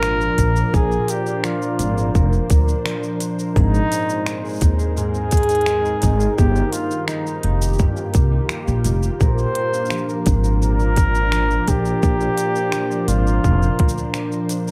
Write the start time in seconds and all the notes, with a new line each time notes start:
Already playing: G#1 A#2 A#3 D4 F4 G4 A#4 C5 D5
0.03 F3, finger snap, cabasa
0.21 A#4, cabasa
0.38 A#1 D4, kick, closed hi-hat, cabasa
0.55 A#4, cabasa
0.74 A#1 A#2 G#4 A#4, kick, cabasa
0.91 A#3, cabasa
1.08 G4 A#4, closed hi-hat, cabasa
1.26 D4, cabasa
1.44 F3 F4, finger snap, cabasa
1.62 A#4, cabasa
1.79 G#1 D4, closed hi-hat, cabasa
1.97 A#4, cabasa
2.15 F1 A#2 A#4, kick, cabasa
2.33 A#3, cabasa
2.50 D2 A#4, kick, closed hi-hat, cabasa
2.67 D4, cabasa
2.85 F3, finger snap, cabasa
3.03 A#4, cabasa
3.20 D4, closed hi-hat, cabasa
3.39 A#4, cabasa
3.55 G#1 G#2 G#3 D#4 G#4, kick, cabasa
3.73 C4, cabasa
3.90 G#4 A#4, closed hi-hat, cabasa
4.01 D#4
4.09 D#4, cabasa
4.26 G#3, finger snap, cabasa
4.44 G#4, cabasa
4.47 cabasa
4.49 cabasa
4.51 cabasa
4.53 cabasa
4.56 cabasa
4.58 cabasa
4.60 D#2 D#4, kick, closed hi-hat, cabasa
4.62 cabasa
4.79 G#4, cabasa
4.96 G#2 G#4, cabasa
5.14 C4, cabasa
5.31 G#4, kick, closed hi-hat, cabasa
5.37 closed hi-hat
5.43 closed hi-hat
5.49 D#4, closed hi-hat, cabasa
5.55 closed hi-hat
5.61 closed hi-hat
5.66 G#3, finger snap, cabasa
5.84 G#4, cabasa
6.02 G#1 D#4, kick, closed hi-hat, cabasa
6.20 G#4, cabasa
6.36 G1 G2 D#3 G4, kick, cabasa
6.55 A#3, cabasa
6.61 F4
6.72 F4 G4, closed hi-hat, cabasa
6.90 D#4, cabasa
7.07 G3 D#4, finger snap, cabasa
7.26 G4, cabasa
7.43 F1 D#4, closed hi-hat
7.51 G4
7.61 G4, cabasa
7.73 cabasa
7.79 G2 G4, kick, cabasa
7.96 A#3, cabasa
8.14 C2 G4, kick, closed hi-hat, cabasa
8.31 D#4
8.49 G3, finger snap, cabasa
8.67 A#1 G4, cabasa
8.84 F1 D#4, closed hi-hat, cabasa
9.03 G4, cabasa
9.20 A#1 A#2 A#4 C5, kick, cabasa
9.38 A#3, cabasa
9.55 A#4, closed hi-hat
9.73 D4, cabasa
9.86 cabasa
9.90 F3, finger snap, cabasa
10.08 A#4, cabasa
10.22 C5
10.26 G#1 D4, kick, closed hi-hat, cabasa
10.44 A#4, cabasa
10.57 D5
10.61 A#2 A#4, cabasa
10.79 A#3, cabasa
10.96 A#4, kick, closed hi-hat, cabasa
11.15 D4, cabasa
11.32 F3, finger snap, cabasa
11.50 A#4, cabasa
11.68 A#1 D4 G4, kick, closed hi-hat, cabasa
11.85 A#4, cabasa
12.03 A#1 A#2 A#4, kick, cabasa
12.20 A#3, cabasa
12.38 A#4, closed hi-hat, cabasa
12.56 D4, cabasa
12.72 F3, finger snap, cabasa
12.91 A#4, cabasa
13.08 G#1 D4 F4, closed hi-hat, cabasa
13.27 A#4, cabasa
13.44 F1 A#2 A#4, kick, cabasa
13.62 A#3, cabasa
13.79 D2 A#4, kick, closed hi-hat
13.89 cabasa
13.98 D4, cabasa
14.14 F3, finger snap, cabasa
14.32 A#4, cabasa
14.49 D4, closed hi-hat, cabasa
14.68 A#4, cabasa